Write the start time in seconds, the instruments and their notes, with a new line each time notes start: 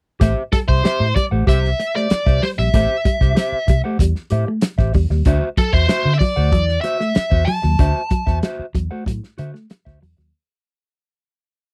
0.20 fingered electric bass A1, clean electric guitar A3 G4 C5 E5, kick, closed hi-hat
0.37 muted clean electric guitar stroke
0.52 clean electric guitar G3, lead electric guitar A4, muted clean electric guitar stroke, kick, closed hi-hat
0.68 fingered electric bass C2, clean electric guitar G4 C5 E5, lead electric guitar C5, kick
0.84 clean electric guitar G4 C5 E5, muted clean electric guitar stroke, snare, closed hi-hat
1.00 fingered electric bass A2
1.16 clean electric guitar G3, lead electric guitar D5, muted clean electric guitar stroke, kick, closed hi-hat
1.31 fingered electric bass A1, clean electric guitar A3 G4 C5 F#5
1.47 fingered electric bass C2, clean electric guitar G3 G4 C5 E5, lead electric guitar E5, kick, closed hi-hat
1.64 snare
1.80 muted clean electric guitar stroke, closed hi-hat
1.95 clean electric guitar A3 G4 C5 E5, lead electric guitar D5, snare
2.10 muted fingered electric bass stroke, muted clean electric guitar stroke, snare, closed hi-hat
2.26 fingered electric bass C2, clean electric guitar G4 C5 E5, kick, snare
2.42 clean electric guitar G3, lead electric guitar C5, open hi-hat
2.59 fingered electric bass A#1, clean electric guitar G3, lead electric guitar E5, muted clean electric guitar stroke, snare
2.74 fingered electric bass A1, clean electric guitar A3 G4 C5 E5, kick, closed hi-hat
2.90 muted clean electric guitar stroke
3.05 clean electric guitar G3, muted clean electric guitar stroke, kick, closed hi-hat
3.21 fingered electric bass C2, clean electric guitar G4 C5 E5, kick, snare
3.35 clean electric guitar G4 C5 E5, muted clean electric guitar stroke, snare, closed hi-hat
3.52 muted fingered electric bass stroke
3.67 fingered electric bass C2, clean electric guitar G3, muted clean electric guitar stroke, kick, closed hi-hat
3.84 clean electric guitar A3 G4 C5 F#5
3.99 fingered electric bass E2, clean electric guitar G3, muted clean electric guitar stroke, kick, closed hi-hat
4.16 snare
4.30 fingered electric bass A2, clean electric guitar G4 C5 E5, muted clean electric guitar stroke, closed hi-hat
4.47 clean electric guitar A3, muted clean electric guitar stroke
4.61 muted clean electric guitar stroke, snare, closed hi-hat
4.78 fingered electric bass A1, clean electric guitar G4 C5 E5, kick, snare
4.94 fingered electric bass E2, clean electric guitar G3, muted clean electric guitar stroke, kick, open hi-hat
5.10 fingered electric bass D#2, clean electric guitar G3, muted clean electric guitar stroke, snare
5.25 fingered electric bass D2, clean electric guitar D4 F#4 C5 E5, kick, closed hi-hat
5.42 muted clean electric guitar stroke
5.57 clean electric guitar F#3, lead electric guitar A4, muted clean electric guitar stroke, kick, closed hi-hat
5.73 fingered electric bass E2, clean electric guitar F#4 C5 E5, lead electric guitar C5, kick
5.88 clean electric guitar F#4 C5 E5, muted clean electric guitar stroke, snare, closed hi-hat
6.05 fingered electric bass D3
6.14 lead electric guitar E5
6.19 clean electric guitar F#3, lead electric guitar D5, muted clean electric guitar stroke, kick, open hi-hat
6.36 fingered electric bass D2, clean electric guitar A3 F#4 C5 F#5
6.52 fingered electric bass E2, clean electric guitar F#3, muted clean electric guitar stroke, kick, closed hi-hat
6.69 snare
6.81 clean electric guitar F#4 C5, lead electric guitar E5, muted clean electric guitar stroke, closed hi-hat
6.86 clean electric guitar E5
7.00 clean electric guitar A3, muted clean electric guitar stroke, snare
7.15 muted clean electric guitar stroke, muted fingered electric bass stroke, snare, closed hi-hat
7.30 fingered electric bass E2, clean electric guitar F#4 C5 E5, kick
7.45 clean electric guitar F#3, lead electric guitar A5, muted clean electric guitar stroke, open hi-hat
7.62 fingered electric bass D#2, clean electric guitar F#3, muted clean electric guitar stroke, snare
7.79 fingered electric bass D2, clean electric guitar D4 F#4 C5 E5, kick, closed hi-hat
7.95 muted clean electric guitar stroke
8.10 clean electric guitar F#3, muted clean electric guitar stroke, kick, closed hi-hat
8.26 fingered electric bass E2, clean electric guitar F#4 C5 E5, kick, snare
8.43 clean electric guitar F#4 C5 E5, muted clean electric guitar stroke, snare, closed hi-hat
8.59 muted fingered electric bass stroke
8.74 fingered electric bass E2, clean electric guitar F#3, muted clean electric guitar stroke, kick, closed hi-hat
8.91 clean electric guitar A3 F#4 C5 F#5
9.06 fingered electric bass A2, clean electric guitar F#3, muted clean electric guitar stroke, kick, closed hi-hat
9.24 snare
9.38 fingered electric bass D3, clean electric guitar F#4 C5 E5, muted clean electric guitar stroke, closed hi-hat
9.54 clean electric guitar A3, muted clean electric guitar stroke, snare
9.70 muted clean electric guitar stroke, snare, closed hi-hat
9.85 fingered electric bass D2, clean electric guitar F#4 C5 E5, kick, snare
10.03 fingered electric bass E2, clean electric guitar F#3, open hi-hat
10.17 fingered electric bass D#2, clean electric guitar F#3, muted clean electric guitar stroke, snare